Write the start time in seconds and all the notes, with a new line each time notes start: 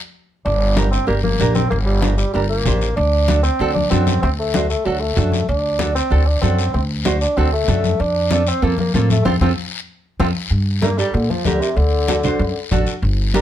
0.45 G1 D4, high conga, long guiro
0.76 D4 G4 A#4, high conga, short guiro
0.91 C4, short guiro
1.07 G1 A#3 D4 G4 A#4, high conga, long guiro
1.23 A#3, high conga
1.40 A#1 D4 G4 A#4, high conga, short guiro
1.55 C4, high conga, short guiro
1.70 G1 A#3, high conga, long guiro
1.85 G3
2.02 F3 D4 G4 A#4, high conga, short guiro
2.17 G3, short guiro
2.33 G1 G3 D4 G4 A#4, high conga, long guiro
2.49 A#3
2.65 A1 D4 G4 C5, high conga, low conga, short guiro
2.81 short guiro
2.96 D2 D4, high conga, long guiro
3.28 D4 F#4 A4, high conga, short guiro
3.43 C4, short guiro
3.59 D2 D4 F#4 A4, high conga, long guiro
3.74 D4, high conga
3.90 F#2 C4 D4 F#4 A4, high conga, short guiro
4.07 high conga, short guiro
4.22 D2 C4, long guiro
4.39 A3
4.54 D4 F#4 C5, high conga, short guiro
4.69 A3, short guiro
4.85 D2 F#3 D4 F#4 A4, high conga, long guiro
5.00 A3
5.16 F#2 D4 F#4 A4, high conga, low conga, short guiro
5.32 high conga, short guiro
5.48 D2 D4, high conga, long guiro
5.79 D4 F#4 A4, high conga, short guiro
5.95 C4, short guiro
6.10 D2 D4 F#4 A4, high conga, long guiro
6.26 D4
6.41 F#2 C4 D4 F#4 A4, high conga, short guiro
6.59 short guiro
6.74 D2 C4, high conga, long guiro
7.05 D4 F#4 C5, high conga, short guiro
7.21 D4, short guiro
7.37 D2 C4 D4 F#4 A4, high conga, long guiro
7.53 A3
7.68 F#2 D4 F#4 A4, high conga, low conga, short guiro
7.84 high conga, short guiro
7.99 F2 D4, high conga, long guiro
8.30 C4 D4 F4 A4, high conga, short guiro
8.47 C4, short guiro
8.62 F2 A#3 C4 F4 A4, high conga, long guiro
8.78 A#3, high conga
8.94 A2 A#3 C4 F4 A4, high conga, short guiro
9.10 A3, high conga, short guiro
9.25 F2 C4 F4 A4, high conga, long guiro
9.41 F2 C4 F4 A4, high conga, long guiro
10.19 F2 C4 F4 A4, high conga, long guiro
10.50 G2, high conga, long guiro
10.82 A#3 D4 G4 A#4, high conga, short guiro
10.98 G3 D4 G4 A4, short guiro
11.14 A#2 D3, high conga, long guiro
11.30 F3, high conga
11.45 D2 D3 D4 G4 A#4, high conga, short guiro
11.60 C3, short guiro
11.76 D2 D3, high conga, long guiro
12.08 D4 F#4 A4, high conga, short guiro
12.23 D4 F#4 C5, low conga, short guiro
12.39 F#2, high conga, long guiro
12.71 A1 D4 F#4 A4, high conga, low conga, short guiro
12.86 short guiro
13.02 G1, high conga, long guiro
13.34 G3 D4 G4 A#4, high conga, short guiro